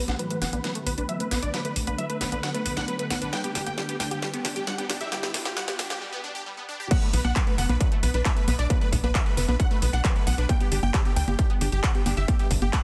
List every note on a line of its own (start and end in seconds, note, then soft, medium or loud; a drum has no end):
0.00 5.97 D3 medium
0.00 3.29 A3 medium
0.00 5.97 B3 medium
0.00 riser medium
0.08 0.16 B1 medium
0.08 0.11 D4 medium
0.08 0.15 F#5 loud
0.08 snare soft
0.08 closed hi-hat medium
0.08 high conga medium
0.19 0.24 F#3 medium
0.19 0.26 B4 medium
0.19 closed hi-hat medium
0.30 0.35 A3 medium
0.30 0.37 B4 medium
0.30 closed hi-hat medium
0.42 0.50 F#1 medium
0.42 0.49 B3 loud
0.42 0.49 F#5 medium
0.42 snare medium
0.42 open hi-hat medium
0.53 0.61 B1 medium
0.53 0.58 D4 medium
0.53 0.60 B4 medium
0.53 closed hi-hat medium
0.53 high conga medium
0.64 0.69 F#3 medium
0.64 0.71 B4 medium
0.64 snare medium
0.64 closed hi-hat medium
0.75 0.80 A3 loud
0.75 closed hi-hat medium
0.86 0.95 B1 loud
0.86 0.91 B3 loud
0.86 0.93 B4 medium
0.86 open hi-hat loud
0.98 1.06 B1 medium
0.98 1.00 D4 loud
0.98 1.05 B4 medium
0.98 closed hi-hat medium
1.09 1.12 F#3 medium
1.09 1.16 E5 medium
1.09 closed hi-hat medium
1.20 1.27 A3 medium
1.20 1.27 B4 medium
1.20 closed hi-hat medium
1.31 1.39 B1 medium
1.31 1.38 B3 loud
1.31 1.38 B4 medium
1.31 snare medium
1.31 open hi-hat medium
1.31 high conga medium
1.42 1.51 B1 medium
1.42 1.49 D4 loud
1.42 1.49 D5 loud
1.42 closed hi-hat medium
1.53 1.56 F#3 medium
1.53 1.61 B4 medium
1.53 snare medium
1.53 closed hi-hat medium
1.53 high conga medium
1.65 1.72 A3 medium
1.65 1.72 B4 medium
1.65 closed hi-hat medium
1.76 1.84 B1 medium
1.76 1.79 B3 medium
1.76 open hi-hat loud
1.87 1.95 B1 medium
1.87 1.90 D4 medium
1.87 1.94 B4 medium
1.87 closed hi-hat medium
1.87 high conga medium
1.98 2.03 F#3 medium
1.98 2.05 E5 medium
1.98 closed hi-hat medium
2.09 2.14 A3 medium
2.09 2.17 B4 medium
2.09 closed hi-hat medium
2.21 2.29 F#1 medium
2.21 2.28 B3 loud
2.21 2.28 B4 medium
2.21 snare medium
2.21 open hi-hat medium
2.32 2.40 B1 medium
2.32 2.37 D4 medium
2.32 2.39 B4 medium
2.32 closed hi-hat medium
2.32 high conga medium
2.43 2.48 F#3 medium
2.43 2.50 F#5 medium
2.43 snare medium
2.43 closed hi-hat medium
2.54 2.59 A3 loud
2.54 2.61 B4 medium
2.54 closed hi-hat medium
2.65 2.74 B1 medium
2.65 2.70 B3 loud
2.65 2.72 B4 medium
2.65 open hi-hat loud
2.76 2.85 B1 medium
2.76 2.80 D4 loud
2.76 2.84 F#5 medium
2.76 snare medium
2.76 closed hi-hat medium
2.88 2.91 F#3 medium
2.88 2.95 B4 medium
2.88 closed hi-hat medium
2.99 3.06 A3 medium
2.99 3.06 B4 medium
2.99 closed hi-hat medium
3.10 3.18 B1 medium
3.10 3.17 B3 loud
3.10 3.17 F#5 medium
3.10 snare medium
3.10 open hi-hat medium
3.21 3.30 B1 medium
3.21 3.29 D4 loud
3.21 3.28 B4 medium
3.21 closed hi-hat medium
3.33 3.36 G3 medium
3.33 5.99 G3 medium
3.33 3.40 G5 loud
3.33 snare medium
3.33 closed hi-hat medium
3.33 high conga medium
3.44 3.51 B3 medium
3.44 3.51 G4 medium
3.44 closed hi-hat medium
3.55 3.63 G1 loud
3.55 3.58 D4 medium
3.55 3.62 G4 medium
3.55 snare medium
3.55 open hi-hat loud
3.66 3.74 G1 medium
3.66 3.69 G4 medium
3.66 3.73 G5 loud
3.66 closed hi-hat medium
3.66 high conga medium
3.78 3.82 G3 medium
3.78 3.85 G4 medium
3.78 snare medium
3.78 closed hi-hat medium
3.89 3.93 B3 medium
3.89 3.96 G4 medium
3.89 closed hi-hat medium
4.00 4.08 D2 medium
4.00 4.07 D4 loud
4.00 4.07 G5 medium
4.00 snare medium
4.00 open hi-hat loud
4.11 4.19 G1 medium
4.11 4.18 G4 medium
4.11 4.16 G4 medium
4.11 closed hi-hat medium
4.11 high conga medium
4.22 4.27 G3 medium
4.22 4.29 G4 medium
4.22 snare medium
4.22 closed hi-hat medium
4.34 4.38 B3 loud
4.34 closed hi-hat medium
4.45 4.53 G1 loud
4.45 4.49 D4 loud
4.45 4.52 G4 medium
4.45 snare medium
4.45 open hi-hat loud
4.56 4.64 G1 medium
4.56 4.63 G4 medium
4.56 4.59 G4 loud
4.56 closed hi-hat medium
4.67 4.70 G3 medium
4.67 4.74 F#5 loud
4.67 snare medium
4.67 closed hi-hat medium
4.78 4.85 B3 medium
4.78 4.85 G4 medium
4.78 closed hi-hat medium
4.89 4.98 G1 medium
4.89 4.96 D4 loud
4.89 4.96 G4 medium
4.89 snare medium
4.89 open hi-hat loud
4.89 high conga medium
5.00 5.09 G1 medium
5.00 5.08 G4 loud
5.00 5.08 E5 loud
5.00 closed hi-hat medium
5.12 5.15 G3 medium
5.12 5.19 G4 medium
5.12 snare medium
5.12 closed hi-hat medium
5.12 high conga medium
5.23 5.30 B3 medium
5.23 5.30 G4 medium
5.23 snare medium
5.23 closed hi-hat medium
5.34 5.42 G1 medium
5.34 5.37 D4 medium
5.34 snare medium
5.34 open hi-hat loud
5.45 5.54 G1 medium
5.45 5.52 G4 medium
5.45 5.48 G4 medium
5.45 snare medium
5.45 closed hi-hat medium
5.45 high conga medium
5.57 5.61 G3 medium
5.57 5.64 F#5 loud
5.57 snare loud
5.57 closed hi-hat medium
5.68 5.73 B3 medium
5.68 5.75 G4 medium
5.68 snare medium
5.68 closed hi-hat medium
5.79 5.87 D2 medium
5.79 5.86 D4 loud
5.79 5.86 G4 medium
5.79 snare loud
5.79 open hi-hat loud
5.90 5.98 G1 medium
5.90 5.95 G4 medium
5.90 5.97 G4 medium
5.90 snare medium
5.90 closed hi-hat medium
5.90 high conga medium
6.01 6.06 G3 medium
6.12 6.17 B3 loud
6.24 6.28 D4 loud
6.35 6.38 G4 loud
6.46 6.49 G3 medium
6.57 6.64 B3 medium
6.69 6.76 D4 loud
6.80 6.87 G4 loud
6.91 6.94 F#3 medium
6.91 6.98 F#5 loud
6.91 kick loud
6.91 closed hi-hat medium
6.91 crash loud
6.91 high conga medium
7.02 7.09 A3 medium
7.02 7.09 B4 medium
7.02 closed hi-hat soft
7.13 7.21 B1 medium
7.13 7.16 B3 medium
7.13 7.20 B4 medium
7.13 open hi-hat loud
7.25 7.33 B1 medium
7.25 7.27 D4 medium
7.25 7.32 F#5 medium
7.25 7.32 F#5 loud
7.25 closed hi-hat soft
7.25 high conga medium
7.36 7.40 F#3 medium
7.36 7.43 B4 medium
7.36 kick loud
7.36 clap loud
7.36 closed hi-hat loud
7.47 7.52 A3 medium
7.47 7.54 B4 medium
7.47 closed hi-hat soft
7.58 7.66 F#1 medium
7.58 7.65 B3 loud
7.58 7.65 F#5 medium
7.58 open hi-hat loud
7.69 7.77 B1 medium
7.69 7.74 D4 medium
7.69 7.76 B4 medium
7.69 closed hi-hat soft
7.69 high conga medium
7.81 7.85 F#3 medium
7.81 7.88 B4 medium
7.81 kick loud
7.81 closed hi-hat loud
7.92 7.96 A3 loud
7.92 closed hi-hat soft
8.03 8.11 B1 medium
8.03 8.08 B3 loud
8.03 8.10 B4 medium
8.03 open hi-hat loud
8.14 8.22 B1 medium
8.14 8.17 D4 loud
8.14 8.21 B4 medium
8.14 closed hi-hat soft
8.25 8.28 F#3 medium
8.25 8.32 E5 medium
8.25 8.32 E5 loud
8.25 kick loud
8.25 clap loud
8.25 closed hi-hat loud
8.36 8.44 A3 medium
8.36 8.43 B4 medium
8.36 8.44 B4 medium
8.36 closed hi-hat soft
8.48 8.56 B1 loud
8.48 8.55 B3 loud
8.48 8.55 B4 medium
8.48 open hi-hat loud
8.48 high conga medium
8.59 8.67 B1 medium
8.59 8.66 D4 loud
8.59 8.66 D5 medium
8.59 closed hi-hat soft
8.70 8.73 F#3 medium
8.70 8.77 B4 medium
8.70 kick loud
8.70 closed hi-hat medium
8.70 high conga medium
8.81 8.88 A3 medium
8.81 8.88 B4 medium
8.81 closed hi-hat soft
8.92 9.01 B1 medium
8.92 8.95 B3 medium
8.92 kick medium
8.92 open hi-hat loud
9.03 9.12 B1 medium
9.03 9.06 D4 medium
9.03 9.11 B4 medium
9.03 closed hi-hat soft
9.03 high conga medium
9.15 9.20 F#3 medium
9.15 9.22 E5 loud
9.15 kick loud
9.15 clap loud
9.15 closed hi-hat medium
9.26 9.31 A3 medium
9.26 9.33 B4 medium
9.26 closed hi-hat soft
9.37 9.45 F#1 medium
9.37 9.44 B3 loud
9.37 9.44 B4 medium
9.37 open hi-hat loud
9.48 9.57 B1 medium
9.48 9.53 D4 medium
9.48 9.55 B4 medium
9.48 9.56 B4 medium
9.48 closed hi-hat soft
9.48 high conga medium
9.60 9.64 F#3 medium
9.60 9.67 F#5 medium
9.60 9.67 F#5 loud
9.60 kick loud
9.60 closed hi-hat loud
9.71 9.75 A3 loud
9.71 9.78 B4 medium
9.71 closed hi-hat soft
9.82 9.90 B1 loud
9.82 9.87 B3 loud
9.82 9.89 B4 medium
9.82 open hi-hat loud
9.93 10.01 B1 medium
9.93 9.96 D4 loud
9.93 10.00 F#5 medium
9.93 10.00 F#5 loud
9.93 closed hi-hat soft
10.04 10.07 F#3 medium
10.04 10.11 B4 medium
10.04 10.12 B4 medium
10.04 kick loud
10.04 clap loud
10.04 closed hi-hat medium
10.16 10.23 A3 medium
10.16 10.23 B4 medium
10.16 closed hi-hat soft
10.27 10.35 B1 medium
10.27 10.34 B3 loud
10.27 10.34 F#5 medium
10.27 open hi-hat loud
10.38 10.46 B1 medium
10.38 10.45 D4 loud
10.38 10.45 B4 medium
10.38 closed hi-hat soft
10.49 10.52 G3 medium
10.49 10.56 G5 loud
10.49 kick loud
10.49 closed hi-hat medium
10.49 high conga medium
10.60 10.67 B3 medium
10.60 10.67 G4 medium
10.60 closed hi-hat soft
10.72 10.80 G1 medium
10.72 10.74 D4 medium
10.72 10.79 G4 medium
10.72 open hi-hat loud
10.83 10.91 G1 medium
10.83 10.86 G4 medium
10.83 10.90 G5 medium
10.83 10.90 G5 loud
10.83 closed hi-hat soft
10.83 high conga medium
10.94 10.99 G3 medium
10.94 11.01 G4 medium
10.94 kick loud
10.94 clap loud
10.94 closed hi-hat medium
11.05 11.10 B3 medium
11.05 11.12 G4 medium
11.05 closed hi-hat soft
11.16 11.24 D2 medium
11.16 11.23 D4 loud
11.16 11.23 G5 medium
11.16 open hi-hat loud
11.27 11.36 G1 medium
11.27 11.35 G4 medium
11.27 11.32 G4 medium
11.27 11.35 G4 medium
11.27 closed hi-hat soft
11.27 high conga medium
11.39 11.43 G3 medium
11.39 11.46 G4 medium
11.39 kick loud
11.39 closed hi-hat medium
11.50 11.55 B3 loud
11.50 closed hi-hat soft
11.61 11.69 G1 loud
11.61 11.66 D4 loud
11.61 11.68 G4 medium
11.61 open hi-hat loud
11.72 11.80 G1 medium
11.72 11.75 G4 loud
11.72 11.79 G4 medium
11.72 closed hi-hat soft
11.83 11.86 G3 medium
11.83 11.90 F#5 medium
11.83 kick loud
11.83 clap loud
11.83 closed hi-hat medium
11.95 12.02 B3 medium
11.95 12.02 G4 medium
11.95 closed hi-hat soft
12.06 12.14 G1 loud
12.06 12.13 D4 loud
12.06 12.13 G4 medium
12.06 open hi-hat loud
12.06 high conga medium
12.17 12.25 G1 medium
12.17 12.24 G4 loud
12.17 12.24 E5 medium
12.17 closed hi-hat soft
12.28 12.31 G3 medium
12.28 12.35 G4 medium
12.28 kick loud
12.28 closed hi-hat medium
12.28 high conga medium
12.39 12.47 B3 medium
12.39 12.46 G4 medium
12.39 closed hi-hat soft
12.51 12.59 G1 medium
12.51 12.54 D4 medium
12.51 kick medium
12.51 open hi-hat loud
12.62 12.70 G1 medium
12.62 12.69 G4 medium
12.62 12.65 G4 medium
12.62 closed hi-hat soft
12.62 high conga medium
12.73 12.78 G3 medium
12.73 12.80 F#5 medium
12.73 kick loud
12.73 clap loud
12.73 closed hi-hat medium